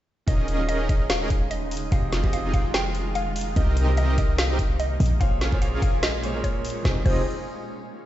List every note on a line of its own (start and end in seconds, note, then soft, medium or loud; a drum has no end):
0.27 1.90 D#1 medium
0.27 1.90 C#3 medium
0.27 0.56 D#3 medium
0.27 3.53 G#3 medium
0.27 0.56 C#4 medium
0.27 0.46 C#4 medium
0.27 1.90 D#4 medium
0.27 0.46 D#4 medium
0.27 0.57 F4 medium
0.27 0.46 G#4 medium
0.27 0.57 G#4 medium
0.27 0.46 A#4 medium
0.27 0.46 D#5 loud
0.27 0.60 D#5 loud
0.27 0.57 D#5 medium
0.27 kick loud
0.27 closed hi-hat medium
0.48 0.87 C#4 medium
0.48 0.87 D#4 medium
0.48 0.87 G#4 medium
0.48 0.87 A#4 medium
0.48 0.87 D#5 medium
0.48 closed hi-hat medium
0.57 1.89 D#3 loud
0.57 1.89 C#4 medium
0.57 1.90 F4 medium
0.57 1.90 G#4 medium
0.61 1.91 D#5 loud
0.69 0.85 D#5 medium
0.69 closed hi-hat medium
0.89 0.99 C#4 loud
0.89 0.99 D#4 medium
0.89 0.99 G#4 medium
0.89 0.99 A#4 medium
0.89 0.99 D#5 loud
0.89 1.06 D#5 medium
0.89 kick loud
0.89 closed hi-hat medium
1.10 1.42 F5 medium
1.10 snare loud
1.10 closed hi-hat medium
1.21 1.29 C#4 medium
1.21 1.29 D#4 medium
1.21 1.29 G#4 medium
1.21 1.29 A#4 medium
1.21 1.29 D#5 medium
1.30 kick loud
1.30 closed hi-hat medium
1.51 1.83 D#5 loud
1.51 closed hi-hat medium
1.71 open hi-hat loud
1.77 closed hi-hat medium
1.91 3.54 F1 medium
1.91 3.55 D#3 medium
1.91 2.20 F3 medium
1.91 2.21 C4 medium
1.91 3.55 F4 medium
1.91 2.21 G4 medium
1.91 2.21 G#4 medium
1.91 2.21 D#5 loud
1.91 2.25 F5 loud
1.91 kick loud
1.91 closed hi-hat medium
2.13 2.51 C4 medium
2.13 2.51 D#4 medium
2.13 2.51 F4 medium
2.13 2.51 G#4 medium
2.13 2.51 D#5 medium
2.13 snare medium
2.13 closed hi-hat medium
2.22 3.53 F3 loud
2.22 3.54 C4 medium
2.22 3.54 G4 medium
2.22 3.55 G#4 medium
2.22 kick loud
2.26 3.55 D#5 loud
2.33 2.49 F5 medium
2.33 closed hi-hat medium
2.54 2.63 C4 loud
2.54 2.63 D#4 medium
2.54 2.63 F4 medium
2.54 2.63 G#4 medium
2.54 2.70 F5 medium
2.54 2.63 G5 loud
2.54 kick loud
2.54 closed hi-hat medium
2.74 3.07 G5 medium
2.74 snare loud
2.74 closed hi-hat medium
2.95 closed hi-hat medium
3.15 3.48 F5 medium
3.15 closed hi-hat medium
3.36 open hi-hat medium
3.41 closed hi-hat medium
3.55 4.98 C2 medium
3.55 3.85 C3 medium
3.55 4.99 C3 medium
3.55 4.99 A#3 medium
3.55 3.85 C4 medium
3.55 3.75 C4 loud
3.55 4.99 D#4 medium
3.55 3.75 D#4 medium
3.55 3.85 G4 medium
3.55 3.75 G4 medium
3.55 3.75 A#4 medium
3.55 3.86 A#4 medium
3.55 3.75 D#5 loud
3.55 3.89 D#5 loud
3.55 3.86 D#5 medium
3.55 kick loud
3.55 closed hi-hat medium
3.77 4.16 C4 medium
3.77 4.16 D#4 medium
3.77 4.16 G4 medium
3.77 4.16 A#4 medium
3.77 4.16 D#5 medium
3.77 closed hi-hat medium
3.86 4.98 C3 loud
3.86 4.99 C4 medium
3.86 4.99 G4 medium
3.86 5.00 A#4 medium
3.86 5.00 D#5 loud
3.97 4.14 D#5 medium
3.97 closed hi-hat medium
4.18 4.28 D#4 medium
4.18 4.28 G4 medium
4.18 4.28 D#5 loud
4.18 4.34 D#5 medium
4.18 kick loud
4.18 closed hi-hat medium
4.38 4.71 F5 medium
4.38 snare loud
4.38 closed hi-hat medium
4.50 4.58 C4 medium
4.50 4.58 D#4 medium
4.50 4.58 G4 medium
4.50 4.58 A#4 medium
4.50 4.58 D#5 medium
4.59 kick loud
4.59 closed hi-hat medium
4.80 5.12 D#5 loud
4.80 closed hi-hat medium
5.00 6.63 A#1 medium
5.00 6.83 A#2 medium
5.00 6.83 G#3 medium
5.00 6.83 C#4 medium
5.00 open hi-hat medium
5.06 closed hi-hat medium
5.20 5.49 A#2 medium
5.20 5.49 A#3 medium
5.20 5.50 G#4 medium
5.20 5.50 C5 medium
5.20 5.50 C#5 loud
5.20 5.53 F5 loud
5.20 kick loud
5.20 closed hi-hat medium
5.41 5.80 C#4 medium
5.41 5.80 F4 medium
5.41 5.80 G#4 medium
5.41 5.80 A#4 medium
5.41 5.80 F5 medium
5.41 snare medium
5.41 closed hi-hat medium
5.50 6.21 A#2 loud
5.50 6.21 A#3 medium
5.50 6.21 G#4 loud
5.50 6.22 C5 medium
5.50 6.22 C#5 loud
5.50 kick loud
5.62 5.78 F5 medium
5.62 closed hi-hat medium
5.82 5.92 C#4 loud
5.82 5.92 F4 medium
5.82 5.92 G#4 medium
5.82 5.92 A#4 medium
5.82 5.99 F5 medium
5.82 kick loud
5.82 closed hi-hat medium
6.03 6.35 D#5 medium
6.03 snare loud
6.03 closed hi-hat medium
6.22 6.31 A#2 medium
6.22 6.32 A#3 medium
6.22 6.32 G#4 medium
6.22 6.32 C5 medium
6.22 6.32 C#5 loud
6.22 closed hi-hat medium
6.32 6.82 A#2 medium
6.32 6.82 A#3 medium
6.32 6.83 G#4 medium
6.32 6.83 A#4 medium
6.37 6.84 C#5 loud
6.44 6.77 C#5 medium
6.44 kick medium
6.44 closed hi-hat medium
6.65 open hi-hat loud
6.70 closed hi-hat medium
6.82 6.97 F1 loud
6.82 6.96 F3 medium
6.82 6.96 C4 medium
6.82 6.97 C4 medium
6.82 6.97 D#4 medium
6.82 6.97 F4 medium
6.82 6.97 G4 medium
6.82 6.97 G#4 medium
6.82 6.97 C5 medium
6.82 6.97 D#5 loud
6.82 kick loud
6.82 snare medium
6.87 6.98 G#4 medium
6.87 6.99 D#5 medium
7.03 7.25 F1 loud
7.03 7.20 F3 medium
7.03 7.20 C4 medium
7.03 7.21 C4 medium
7.03 7.21 D#4 medium
7.03 7.21 F4 medium
7.03 7.21 G4 medium
7.03 7.21 G#4 medium
7.03 7.21 C5 loud
7.03 7.21 D#5 loud
7.03 kick loud
7.03 crash medium
7.07 7.22 G#4 medium
7.07 7.23 D#5 loud